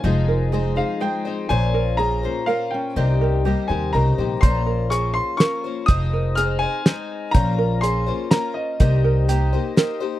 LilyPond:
<<
  \new Staff \with { instrumentName = "Upright piano" } { \time 3/4 \key bes \dorian \tempo 4 = 123 aes''4 r8 f''8 g''4 | aes''4 bes''4 f''8 g''8~ | g''4 r8 aes''8 bes''4 | c'''4 des'''8 c'''8 des'''4 |
ees'''4 f'''8 aes''4. | bes''4 c'''4 bes''8 ees''8~ | ees''2~ ees''8 r8 | }
  \new Staff \with { instrumentName = "Ukulele" } { \time 3/4 \key bes \dorian c''8 bes'8 aes'4 c''4 | c''8 bes'8 aes'4 bes'4 | c''8 bes'8 g'4 bes'4 | c''8 bes'8 aes'4 bes'4 |
c''8 bes'8 aes'4 c''4 | c''8 bes'8 aes'4 bes'4 | c''8 bes'8 g'4 bes'4 | }
  \new Staff \with { instrumentName = "Twelve-string acoustic guitar" } { \time 3/4 \key bes \dorian <f aes c' ees' c''>4 <aes c' ees' c''>8 <c' ees' c''>8 <aes c' ees' c''>8 <c' ees' c''>8 | <bes, f bes des' f' c''>4 <bes des' f' c''>8 <bes des' f' c''>8 <bes des' f' c''>4 | <c g bes ees' g' c''>4 <bes ees' g' c''>8 <bes ees' g' c''>8 <bes ees' g' c''>8 <bes ees' g' c''>8 | <bes, f bes des' f' c''>4 <bes des' f' c''>4 <bes des' f' c''>8 <bes des' f' c''>8 |
<f aes c' ees' c''>4 <aes c' ees' c''>8 <c' ees' c''>8 <aes c' ees' c''>4 | <bes, f bes des' f' c''>4 <bes des' f' c''>8 <bes des' f' c''>8 <bes des' f' c''>4 | <c g bes ees' g' c''>4 <bes ees' g' c''>8 <bes ees' g' c''>8 <bes ees' g' c''>8 <bes ees' g' c''>8 | }
  \new Staff \with { instrumentName = "Steel-string acoustic guitar" } { \time 3/4 \key bes \dorian << { <aes ees' f' aes'>8 f'4 aes'4 ees'8 | c''8 f'4 c''4 des'8 | bes'8 g'4 bes'4. | r2. |
r2. | r2. | r2. | } \\ { f4 aes4 aes4 | bes,4 bes4 bes4 | c4 g4 des8 c8 | r2. |
r2. | r2. | r2. | } >> }
  \new Staff \with { instrumentName = "Upright bass" } { \clef bass \time 3/4 \key bes \dorian f,,2 r4 | bes,,2 r4 | c,4. ees,8 c,8 bes,,8 | bes,,2 r4 |
f,,2 r4 | bes,,2 r4 | c,2 r4 | }
  \new DrumStaff \with { instrumentName = "Drums" } \drummode { \time 3/4 r4 r4 r4 | r4 r4 r4 | r4 r4 r4 | <hh bd>4 hh4 <hh sn>4 |
<hh bd>4 hh4 <hh sn>4 | <hh bd>4 hh4 <hh sn>4 | <hh bd>4 hh4 <hh sn>4 | }
>>